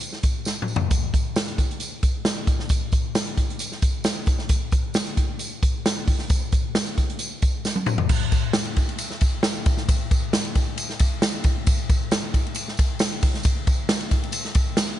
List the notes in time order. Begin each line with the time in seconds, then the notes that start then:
0.01 closed hi-hat
0.12 snare
0.23 kick, closed hi-hat, tambourine
0.45 snare, tambourine
0.62 mid tom
0.68 tambourine
0.76 floor tom
0.91 kick, closed hi-hat, tambourine
1.14 kick, closed hi-hat, tambourine
1.36 snare, closed hi-hat, tambourine
1.48 closed hi-hat
1.58 kick, closed hi-hat, tambourine
1.71 closed hi-hat
1.80 closed hi-hat, tambourine
2.03 kick, closed hi-hat, tambourine
2.25 snare, closed hi-hat, tambourine
2.47 kick, closed hi-hat, tambourine
2.59 snare
2.69 kick, closed hi-hat, tambourine
2.92 kick, closed hi-hat, tambourine
3.15 snare, closed hi-hat, tambourine
3.27 closed hi-hat
3.37 kick, closed hi-hat, tambourine
3.50 closed hi-hat
3.59 closed hi-hat, tambourine
3.72 snare
3.82 kick, closed hi-hat, tambourine
4.04 snare, closed hi-hat, tambourine
4.26 kick, closed hi-hat, tambourine
4.39 snare
4.49 kick, closed hi-hat, tambourine
4.71 kick, closed hi-hat, tambourine
4.94 snare, closed hi-hat, tambourine
5.06 closed hi-hat
5.17 kick, closed hi-hat, tambourine
5.39 closed hi-hat, tambourine
5.63 kick, closed hi-hat, tambourine
5.86 snare, closed hi-hat, tambourine
6.08 kick, open hi-hat, tambourine
6.19 snare
6.30 kick, closed hi-hat, tambourine
6.52 kick, closed hi-hat, tambourine
6.75 snare, closed hi-hat, tambourine
6.86 closed hi-hat
6.98 kick, closed hi-hat, tambourine
7.10 closed hi-hat
7.19 closed hi-hat, tambourine
7.42 kick, closed hi-hat, tambourine
7.65 snare, tambourine
7.76 high tom
7.86 mid tom, tambourine
7.98 floor tom
8.09 kick, crash, tambourine
8.32 kick, ride, tambourine
8.53 snare, ride, tambourine
8.65 ride
8.76 kick, ride, tambourine
8.89 ride
8.98 ride, tambourine
9.11 snare
9.21 kick, ride, tambourine
9.43 snare, ride, tambourine
9.66 kick, ride, tambourine
9.77 snare
9.89 kick, ride, tambourine
10.11 kick, ride, tambourine
10.33 snare, ride, tambourine
10.45 ride
10.55 kick, ride, tambourine
10.78 ride, tambourine
10.89 snare
10.99 kick, ride, tambourine
11.22 snare, ride, tambourine
11.44 kick, ride, tambourine
11.67 kick, ride, tambourine
11.89 kick, ride, tambourine
12.11 snare, ride, tambourine
12.34 kick, ride, tambourine
12.47 ride
12.55 ride, tambourine
12.68 snare
12.77 kick, ride, tambourine
12.99 snare, ride, tambourine
13.21 kick, open hi-hat, ride, tambourine
13.34 snare
13.43 kick, hi-hat pedal, ride, tambourine
13.67 kick, ride, tambourine
13.89 snare, ride, tambourine
14.00 ride
14.11 kick, ride, tambourine
14.23 ride
14.32 ride, tambourine
14.45 snare
14.55 kick, ride, tambourine
14.77 snare, ride, tambourine